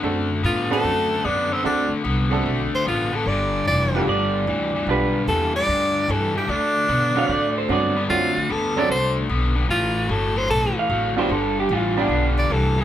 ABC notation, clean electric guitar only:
X:1
M:4/4
L:1/16
Q:"Swing" 1/4=149
K:Dmix
V:1 name="Clean electric guitar"
z16 | z16 | z8 d8 | B3 z12 z |
z6 =f2 d2 c2 d3 z | z16 | z8 z2 =f4 c2 | A2 G2 =F2 D3 z6 z |]